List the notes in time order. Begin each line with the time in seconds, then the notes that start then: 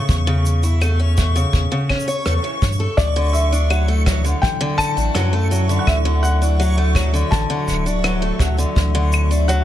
Already playing: C#3 C#6
0.09 E2, kick, shaker
0.27 C#3
0.46 shaker
0.63 E4, shaker
0.81 A3, claves, shaker
0.99 C#4
1.17 A3, kick, shaker
1.36 C#3, shaker
1.53 E2, kick, shaker
1.72 C#3
1.89 C#4, kick, claves
2.00 shaker
2.08 C#5, shaker
2.26 E2 A3, cross-stick, shaker
2.44 E3
2.62 G2, kick, shaker
2.72 shaker
2.80 A4
2.97 D2 F#3 E4 D5 E5, kick, shaker
3.16 D3
3.33 E5, shaker
3.52 D4, shaker
3.70 F#3, claves, shaker
3.88 A3
4.06 F#3, kick, cross-stick, shaker
4.24 D3, shaker
4.42 G5, kick, shaker
4.61 D3
4.78 A5, kick, claves, shaker
4.97 A1 D4, shaker
5.15 F#2 F#3, cross-stick, shaker
5.33 A3
5.51 F#3, shaker
5.69 D3, shaker
5.79 F#5
5.87 D2 E5, kick, claves, shaker
6.05 D3
6.23 F#5, shaker
6.42 D4, shaker
6.60 F#3, shaker
6.78 A3
6.95 F#3, kick, claves, shaker
7.14 D3, shaker
7.31 A1 A5, kick, shaker
7.50 D3
7.68 D1, kick, shaker
7.86 D4, shaker
8.04 F#3, cross-stick, claves, shaker
8.22 A3
8.39 D2 F#3, kick, shaker
8.58 D3, shaker
8.76 D2 D4, kick, shaker
8.95 D3
9.13 claves, shaker
9.31 D4, shaker
9.48 F#3 F#5, shaker